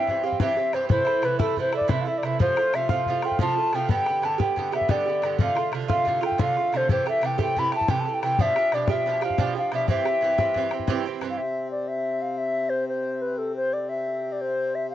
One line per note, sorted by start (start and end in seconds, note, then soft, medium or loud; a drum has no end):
0.00 0.26 E5 medium
0.07 0.24 G2 medium
0.07 0.25 E3 medium
0.07 0.24 C4 medium
0.07 0.22 G4 medium
0.07 bodhran soft
0.23 0.39 E3 soft
0.23 0.40 C4 soft
0.23 0.40 G4 medium
0.23 0.40 F5 medium
0.32 bodhran soft
0.40 0.57 G2 medium
0.40 0.58 E3 medium
0.40 0.57 C4 medium
0.40 0.55 G4 medium
0.40 0.76 E5 medium
0.40 bodhran medium
0.56 0.73 E3 soft
0.56 0.74 C4 soft
0.56 0.73 G4 medium
0.73 0.88 G2 medium
0.73 0.88 E3 medium
0.73 0.90 C4 medium
0.73 0.91 G4 medium
0.73 0.89 C5 medium
0.73 bodhran medium
0.89 1.07 C3 medium
0.89 1.07 E3 medium
0.89 1.06 A3 medium
0.89 1.04 E4 medium
0.89 1.27 C5 loud
0.89 bodhran medium
1.05 1.22 E3 medium
1.05 1.23 A3 medium
1.05 1.22 E4 medium
1.05 bodhran medium
1.22 1.39 C3 medium
1.22 1.39 E3 medium
1.22 1.39 A3 medium
1.22 1.38 E4 medium
1.22 1.40 B4 medium
1.22 bodhran medium
1.39 1.55 C3 medium
1.39 1.57 E3 medium
1.39 1.57 A3 medium
1.39 1.57 E4 medium
1.39 1.56 A4 medium
1.39 bodhran medium
1.57 1.73 C3 soft
1.57 1.74 E3 medium
1.57 1.72 A3 medium
1.57 1.71 E4 medium
1.57 1.74 C5 medium
1.57 bodhran soft
1.72 1.88 E3 soft
1.72 1.88 A3 soft
1.72 1.89 E4 medium
1.72 1.90 D5 medium
1.72 bodhran medium
1.81 bodhran soft
1.88 2.06 C3 medium
1.88 2.07 E3 medium
1.88 2.05 A3 medium
1.88 2.04 E4 medium
1.88 2.03 E5 medium
1.88 bodhran medium
2.01 2.10 F5 medium
2.05 2.23 E3 soft
2.05 2.23 A3 soft
2.05 2.22 E4 soft
2.05 2.20 E5 medium
2.18 2.27 D5 medium
2.23 2.38 C3 medium
2.23 2.39 E3 medium
2.23 2.40 A3 medium
2.23 2.41 E4 medium
2.23 2.41 E5 medium
2.23 bodhran medium
2.39 2.57 C3 medium
2.39 2.57 F3 medium
2.39 2.56 A3 medium
2.39 2.55 F4 medium
2.39 2.77 C5 medium
2.39 bodhran medium
2.56 2.73 F3 soft
2.56 2.74 A3 medium
2.56 2.73 F4 medium
2.56 bodhran medium
2.73 2.89 C3 medium
2.73 2.90 F3 medium
2.73 2.89 A3 medium
2.73 2.88 F4 medium
2.73 2.90 E5 medium
2.73 bodhran medium
2.89 3.07 C3 medium
2.89 3.07 F3 medium
2.89 3.07 A3 medium
2.89 3.07 F4 medium
2.89 3.27 F5 medium
2.89 bodhran medium
3.06 3.23 C3 medium
3.06 3.24 F3 medium
3.06 3.23 A3 medium
3.06 bodhran soft
3.10 3.22 F4 medium
3.22 3.40 A3 soft
3.22 3.39 F4 soft
3.22 3.41 G5 medium
3.22 bodhran medium
3.26 3.40 F3 soft
3.31 bodhran soft
3.39 3.57 C3 medium
3.39 3.58 F3 medium
3.39 3.57 A3 medium
3.39 3.54 F4 medium
3.39 3.77 A5 loud
3.39 bodhran medium
3.55 3.73 F3 soft
3.55 3.73 A3 soft
3.55 3.72 F4 soft
3.73 3.88 C3 medium
3.73 3.89 F3 medium
3.73 3.90 A3 medium
3.73 3.91 F4 medium
3.73 3.90 G5 loud
3.73 bodhran soft
3.89 4.06 G2 medium
3.89 4.07 D3 medium
3.89 4.07 B3 medium
3.89 4.05 G4 medium
3.89 4.27 G5 loud
3.89 bodhran medium
4.06 4.22 D3 soft
4.06 4.23 B3 medium
4.06 4.22 G4 soft
4.06 bodhran medium
4.22 4.39 G2 medium
4.22 4.38 D3 medium
4.22 4.38 B3 medium
4.22 4.37 G4 medium
4.22 4.40 A5 loud
4.22 bodhran soft
4.38 4.55 G2 medium
4.38 4.56 D3 medium
4.38 4.57 B3 medium
4.38 4.56 G4 medium
4.38 4.72 G5 medium
4.38 bodhran medium
4.56 4.73 G2 medium
4.56 4.73 D3 medium
4.56 4.73 B3 medium
4.56 4.71 G4 medium
4.56 bodhran soft
4.72 4.88 D3 soft
4.72 4.89 B3 soft
4.72 4.89 G4 medium
4.72 4.92 E5 medium
4.72 bodhran medium
4.81 bodhran soft
4.89 5.06 G2 medium
4.89 5.07 D3 medium
4.89 5.06 B3 medium
4.89 5.04 G4 medium
4.89 5.40 D5 medium
4.89 bodhran medium
5.06 5.22 D3 soft
5.06 5.23 B3 soft
5.06 5.22 G4 soft
5.22 5.38 G2 medium
5.22 5.38 D3 medium
5.22 5.40 B3 medium
5.22 5.40 G4 medium
5.22 bodhran medium
5.39 5.56 C3 medium
5.39 5.57 D3 medium
5.39 5.56 A3 medium
5.39 5.54 F4 medium
5.39 5.69 F5 medium
5.39 bodhran medium
5.55 5.72 D3 soft
5.55 5.73 A3 medium
5.55 5.72 F4 medium
5.55 bodhran medium
5.72 5.88 C3 medium
5.72 5.88 D3 medium
5.72 5.88 A3 medium
5.72 5.87 F4 medium
5.72 bodhran medium
5.88 6.04 C3 soft
5.88 6.05 D3 medium
5.88 6.06 A3 medium
5.88 6.06 F4 medium
5.88 6.21 F5 medium
5.88 bodhran medium
6.05 6.22 C3 medium
6.05 6.23 D3 medium
6.05 6.21 A3 medium
6.05 6.20 F4 medium
6.05 bodhran soft
6.21 6.38 D3 soft
6.21 6.38 A3 soft
6.21 6.38 F4 soft
6.21 bodhran medium
6.25 6.39 G5 medium
6.32 bodhran soft
6.38 6.56 C3 medium
6.38 6.57 D3 medium
6.38 6.57 A3 medium
6.38 6.55 F4 medium
6.38 bodhran loud
6.43 6.78 F5 loud
6.56 6.73 D3 soft
6.56 6.73 A3 soft
6.56 6.73 F4 soft
6.72 6.88 C3 medium
6.72 6.89 D3 medium
6.72 6.89 A3 medium
6.72 6.90 F4 medium
6.72 bodhran medium
6.77 6.91 C5 medium
6.89 7.06 C3 medium
6.89 7.07 E3 medium
6.89 7.06 A3 medium
6.89 7.04 G4 medium
6.89 7.06 C5 medium
6.89 bodhran medium
7.06 7.21 E3 medium
7.06 7.23 A3 soft
7.06 7.22 G4 medium
7.06 7.28 E5 loud
7.06 bodhran medium
7.21 7.38 C3 medium
7.21 7.38 E3 medium
7.21 7.37 A3 medium
7.21 7.37 G4 medium
7.21 bodhran medium
7.26 7.40 G5 loud
7.38 7.55 C3 medium
7.38 7.56 E3 medium
7.38 7.56 A3 medium
7.38 7.56 G4 medium
7.38 bodhran medium
7.42 7.61 G5 loud
7.57 7.72 C3 medium
7.57 7.73 E3 medium
7.57 7.73 A3 medium
7.57 7.71 G4 medium
7.57 7.74 B5 loud
7.57 bodhran soft
7.72 7.88 E3 soft
7.72 7.88 A3 medium
7.72 7.88 G4 soft
7.72 7.92 A5 loud
7.72 bodhran medium
7.81 bodhran soft
7.88 8.06 C3 medium
7.88 8.06 E3 medium
7.88 8.06 A3 medium
7.88 8.04 G4 medium
7.88 8.02 G5 medium
7.88 bodhran medium
8.00 8.16 A5 medium
8.05 8.22 E3 soft
8.05 8.23 A3 soft
8.05 8.22 G4 soft
8.14 8.22 G5 medium
8.22 8.38 C3 medium
8.22 8.39 E3 medium
8.22 8.39 A3 medium
8.22 8.40 G4 medium
8.22 8.43 G5 loud
8.22 bodhran medium
8.39 8.56 B2 medium
8.39 8.56 F3 medium
8.39 8.57 D4 medium
8.39 8.55 G4 medium
8.39 8.76 E5 loud
8.39 bodhran medium
8.56 8.72 F3 soft
8.56 8.73 D4 soft
8.56 8.72 G4 medium
8.56 bodhran medium
8.72 8.88 B2 medium
8.72 8.89 F3 medium
8.72 8.88 D4 medium
8.72 8.88 G4 medium
8.72 8.92 D5 medium
8.72 bodhran medium
8.88 9.05 B2 medium
8.88 9.06 F3 medium
8.88 9.07 D4 medium
8.88 9.06 G4 medium
8.88 9.25 E5 medium
8.88 bodhran medium
9.06 9.22 B2 medium
9.06 9.23 F3 medium
9.06 9.22 D4 medium
9.06 9.20 G4 medium
9.21 9.38 F3 soft
9.21 9.38 D4 soft
9.21 9.38 G4 medium
9.21 9.57 F5 medium
9.21 bodhran medium
9.30 bodhran soft
9.38 9.56 B2 medium
9.38 9.56 F3 medium
9.38 9.55 D4 medium
9.38 9.54 G4 medium
9.38 bodhran medium
9.55 9.72 F3 soft
9.55 9.72 D4 soft
9.55 9.72 G4 soft
9.55 9.72 F5 medium
9.72 9.87 B2 medium
9.72 9.88 F3 medium
9.72 9.89 D4 medium
9.72 9.89 G4 medium
9.72 9.88 E5 medium
9.72 bodhran medium
9.88 10.06 G2 medium
9.88 10.06 E3 medium
9.88 10.06 C4 medium
9.88 10.04 G4 medium
9.88 11.03 E5 loud
9.88 bodhran medium
10.05 10.21 E3 soft
10.05 10.22 C4 soft
10.05 10.22 G4 medium
10.05 bodhran medium
10.21 10.38 G2 medium
10.21 10.38 E3 medium
10.21 10.38 C4 medium
10.21 10.37 G4 medium
10.38 10.53 G2 medium
10.38 10.55 E3 medium
10.38 10.56 C4 medium
10.38 10.56 G4 medium
10.38 bodhran medium
10.54 10.71 G2 medium
10.54 10.72 E3 medium
10.54 10.72 C4 medium
10.54 10.70 G4 medium
10.54 bodhran soft
10.71 10.87 E3 soft
10.71 10.88 C4 soft
10.71 10.88 G4 soft
10.71 bodhran medium
10.79 bodhran soft
10.87 11.06 G2 medium
10.87 11.06 E3 medium
10.87 11.06 C4 medium
10.87 11.04 G4 loud
10.87 bodhran medium
11.05 11.21 E3 soft
11.05 11.22 C4 soft
11.05 11.22 G4 medium
11.21 11.38 G2 medium
11.21 11.39 E3 medium
11.21 11.39 C4 medium
11.21 11.40 G4 medium
11.21 bodhran medium
11.30 11.39 F5 medium
11.37 14.95 C3 medium
11.37 14.95 C4 medium
11.37 11.71 E5 medium
11.71 11.90 D5 medium
11.88 12.23 E5 medium
12.22 12.39 F5 medium
12.38 12.71 E5 medium
12.70 12.88 C5 medium
12.89 13.23 C5 medium
13.22 13.40 B4 medium
13.38 13.56 A4 medium
13.56 13.75 C5 medium
13.73 13.91 D5 medium
13.89 14.34 E5 medium
14.32 14.43 D5 medium
14.41 14.77 C5 medium
14.75 14.90 E5 medium
14.90 14.95 F5 medium